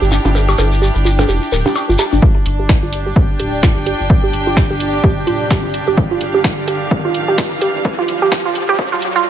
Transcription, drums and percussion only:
0.02 shekere
0.12 percussion blips, shekere
0.25 percussion blips, shekere
0.35 percussion blips, shekere
0.49 percussion blips, shekere
0.58 percussion blips, shekere
0.72 shekere
0.82 shekere
0.95 shekere
1.06 shekere
1.19 percussion blips, shekere
1.29 shekere
1.42 shekere
1.52 shekere
1.66 percussion blips, shekere
1.75 percussion blips, shekere
1.90 shekere
1.98 percussion blips, shekere
2.13 shekere
2.22 kick
2.46 closed hi-hat
2.69 kick, snare
2.93 closed hi-hat
3.16 kick
3.40 closed hi-hat
3.63 kick, snare
3.86 closed hi-hat
4.10 kick
4.33 closed hi-hat
4.57 kick, snare
4.80 closed hi-hat
5.04 kick
5.27 closed hi-hat
5.50 kick, snare
5.74 closed hi-hat
5.97 kick
6.21 closed hi-hat
6.44 kick, snare
6.68 closed hi-hat
6.91 kick
7.15 closed hi-hat
7.38 kick, snare
7.61 closed hi-hat
7.85 kick
8.08 closed hi-hat
8.32 kick, snare
8.55 closed hi-hat
8.79 kick
9.02 closed hi-hat

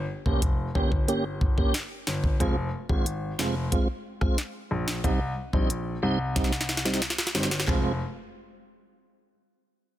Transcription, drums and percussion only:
0.26 kick
0.42 kick, closed hi-hat
0.75 kick
0.92 kick
1.08 closed hi-hat
1.41 kick
1.58 kick
1.74 snare, closed hi-hat
2.07 snare
2.24 kick
2.40 kick, closed hi-hat
2.89 kick
3.06 closed hi-hat
3.39 snare
3.72 kick, closed hi-hat
4.21 kick, cross-stick
4.38 snare, closed hi-hat
4.88 snare
5.04 kick, closed hi-hat
5.53 kick
5.70 closed hi-hat
6.36 kick, snare, closed hi-hat
6.44 snare
6.53 snare
6.61 snare
6.69 snare
6.77 snare
6.86 snare
6.94 snare
7.02 snare, closed hi-hat
7.10 snare
7.18 snare
7.27 snare
7.35 snare
7.43 snare
7.51 snare
7.60 snare
7.68 kick, clap

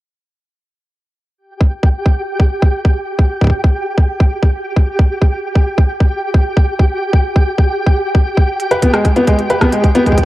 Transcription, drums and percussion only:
1.61 kick
1.83 kick
2.06 kick
2.40 kick
2.62 kick
2.85 kick
3.18 kick
3.41 kick
3.44 kick
3.47 kick
3.50 kick
3.64 kick
3.97 kick
4.20 kick
4.43 kick
4.76 kick
4.99 kick
5.22 kick
5.55 kick
5.78 kick
6.00 kick
6.34 kick
6.57 kick
6.79 kick
7.13 kick
7.36 kick
7.58 kick
7.87 kick
8.15 kick
8.37 kick
8.60 closed hi-hat
8.71 closed hi-hat
8.82 kick, closed hi-hat
8.94 cross-stick, closed hi-hat
9.05 kick, closed hi-hat
9.16 closed hi-hat
9.27 kick, closed hi-hat
9.39 closed hi-hat
9.50 closed hi-hat
9.61 kick, cross-stick, closed hi-hat
9.73 closed hi-hat
9.84 kick, closed hi-hat
9.95 closed hi-hat
10.06 kick, closed hi-hat
10.12 kick
10.18 kick, closed hi-hat

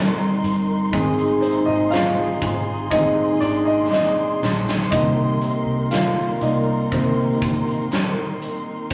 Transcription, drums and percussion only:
0.44 closed hi-hat
0.93 kick, closed hi-hat
1.18 closed hi-hat
1.43 closed hi-hat
1.92 snare, closed hi-hat
2.42 kick, closed hi-hat
2.91 kick, closed hi-hat
3.42 closed hi-hat
3.93 snare
4.43 snare
4.69 snare
4.92 kick, closed hi-hat
5.42 closed hi-hat
5.91 snare, closed hi-hat
6.41 closed hi-hat
6.92 kick, closed hi-hat
7.42 kick, closed hi-hat
7.68 closed hi-hat
7.92 snare, closed hi-hat
8.42 closed hi-hat
8.90 closed hi-hat

